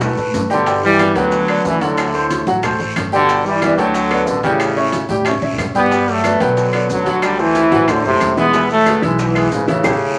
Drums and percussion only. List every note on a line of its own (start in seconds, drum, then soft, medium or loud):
0.01 high bongo medium
0.01 high conga soft
0.01 low conga medium
0.01 low timbale loud
0.01 long guiro medium
0.01 maracas medium
0.17 high bongo soft
0.17 high conga soft
0.17 maracas soft
0.34 high bongo soft
0.34 low bongo medium
0.34 high conga medium
0.34 low timbale medium
0.34 short guiro medium
0.34 maracas medium
0.50 high bongo soft
0.50 low timbale medium
0.50 short guiro medium
0.50 maracas soft
0.66 high bongo medium
0.66 high conga soft
0.66 high timbale medium
0.66 long guiro medium
0.66 maracas medium
0.83 high conga soft
0.83 maracas soft
0.99 high bongo medium
0.99 high conga medium
0.99 high timbale loud
0.99 short guiro medium
0.99 claves medium
0.99 maracas medium
1.16 high bongo soft
1.16 high timbale medium
1.16 short guiro medium
1.16 maracas soft
1.32 high bongo medium
1.32 long guiro medium
1.32 maracas medium
1.48 high bongo soft
1.48 high conga soft
1.48 high timbale medium
1.48 claves medium
1.48 maracas soft
1.65 high bongo soft
1.65 low bongo medium
1.65 short guiro medium
1.65 maracas medium
1.81 high bongo soft
1.81 high conga medium
1.81 high timbale medium
1.81 short guiro medium
1.81 maracas soft
1.97 high bongo medium
1.97 high timbale medium
1.97 long guiro medium
1.97 claves medium
1.97 maracas medium
2.14 high conga soft
2.14 maracas soft
2.30 high bongo medium
2.30 high conga medium
2.30 high timbale medium
2.30 short guiro medium
2.30 maracas medium
2.47 high bongo soft
2.47 high conga medium
2.47 short guiro medium
2.47 maracas soft
2.63 high bongo medium
2.63 high conga soft
2.63 low conga medium
2.63 high timbale medium
2.63 long guiro medium
2.63 claves medium
2.63 maracas medium
2.79 high bongo soft
2.79 high conga soft
2.79 maracas soft
2.96 high bongo soft
2.96 low bongo medium
2.96 high conga medium
2.96 high timbale medium
2.96 low timbale medium
2.96 short guiro medium
2.96 claves medium
2.96 maracas medium
3.12 high bongo soft
3.12 high conga soft
3.12 short guiro medium
3.12 maracas soft
3.29 high bongo medium
3.29 high conga soft
3.29 high timbale medium
3.29 long guiro medium
3.29 maracas medium
3.46 high conga soft
3.46 maracas soft
3.62 high bongo medium
3.62 high conga loud
3.62 high timbale medium
3.62 short guiro medium
3.62 claves medium
3.62 maracas medium
3.78 high bongo soft
3.78 high conga soft
3.78 high timbale medium
3.78 short guiro medium
3.78 maracas soft
3.94 high bongo medium
3.94 high conga soft
3.94 long guiro medium
3.94 maracas medium
4.11 high bongo soft
4.11 high conga soft
4.11 high timbale medium
4.11 claves medium
4.11 maracas soft
4.27 high bongo soft
4.27 low bongo medium
4.27 short guiro medium
4.27 maracas medium
4.43 high bongo soft
4.43 high conga medium
4.43 high timbale medium
4.43 short guiro medium
4.43 maracas soft
4.60 high bongo medium
4.60 high timbale medium
4.60 long guiro medium
4.60 claves medium
4.60 maracas medium
4.76 high conga soft
4.76 maracas soft
4.92 high bongo medium
4.92 high conga medium
4.92 high timbale medium
4.92 short guiro medium
4.92 maracas medium
5.09 high bongo soft
5.09 high conga medium
5.09 short guiro medium
5.09 maracas soft
5.20 high conga medium
5.25 high bongo medium
5.25 high timbale medium
5.25 long guiro medium
5.25 claves medium
5.25 maracas medium
5.31 low conga medium
5.42 high bongo soft
5.42 high conga medium
5.42 maracas soft
5.53 low conga loud
5.58 high bongo soft
5.58 low bongo medium
5.58 high timbale medium
5.58 short guiro medium
5.58 claves medium
5.58 maracas medium
5.64 low conga medium
5.75 high bongo soft
5.75 low conga medium
5.75 short guiro medium
5.75 maracas soft
5.86 low conga medium
5.91 high bongo medium
5.91 high conga soft
5.91 high timbale medium
5.91 long guiro medium
5.91 maracas medium
6.08 high conga soft
6.08 maracas soft
6.24 high bongo medium
6.24 high conga medium
6.24 high timbale medium
6.24 short guiro medium
6.24 claves medium
6.24 maracas medium
6.40 high bongo soft
6.40 high conga soft
6.40 high timbale medium
6.40 short guiro medium
6.40 maracas soft
6.57 high bongo medium
6.57 long guiro medium
6.57 maracas medium
6.73 high bongo soft
6.73 high conga soft
6.73 high timbale medium
6.73 claves medium
6.73 maracas soft
6.90 high bongo soft
6.90 low bongo medium
6.90 short guiro medium
6.90 maracas medium
7.05 high bongo soft
7.05 high conga medium
7.05 high timbale medium
7.05 short guiro medium
7.05 maracas soft
7.22 high bongo medium
7.22 high conga soft
7.22 high timbale medium
7.22 long guiro medium
7.22 claves medium
7.22 maracas medium
7.39 high conga soft
7.39 maracas soft
7.55 high bongo medium
7.55 high conga medium
7.55 high timbale medium
7.55 short guiro medium
7.55 maracas medium
7.72 high conga medium
7.72 short guiro medium
7.72 maracas soft
7.88 high bongo medium
7.88 high conga soft
7.88 low conga medium
7.88 high timbale medium
7.88 long guiro medium
7.88 claves medium
7.88 maracas medium
8.04 high bongo soft
8.04 high conga soft
8.04 low conga medium
8.04 maracas soft
8.21 high bongo soft
8.21 low bongo medium
8.21 high conga medium
8.21 high timbale medium
8.21 low timbale medium
8.21 short guiro medium
8.21 claves medium
8.21 maracas medium
8.37 high bongo soft
8.37 high conga soft
8.37 short guiro medium
8.37 maracas soft
8.53 high bongo medium
8.53 high timbale medium
8.53 long guiro medium
8.53 maracas medium
8.70 high conga soft
8.70 maracas soft
8.86 high bongo medium
8.86 high conga loud
8.86 high timbale medium
8.86 short guiro medium
8.86 claves medium
8.86 maracas medium
9.03 high bongo soft
9.03 high timbale medium
9.03 short guiro medium
9.03 maracas soft
9.19 high bongo medium
9.19 long guiro medium
9.19 maracas medium
9.35 high bongo soft
9.35 high timbale medium
9.35 claves medium
9.35 maracas soft
9.51 high bongo soft
9.51 low bongo medium
9.51 low timbale medium
9.51 short guiro medium
9.51 maracas medium
9.68 high bongo soft
9.68 high conga medium
9.68 high timbale medium
9.68 short guiro medium
9.68 maracas soft
9.84 low bongo medium
9.84 high conga loud
9.84 high timbale medium
9.84 long guiro medium
9.84 claves loud
9.84 maracas loud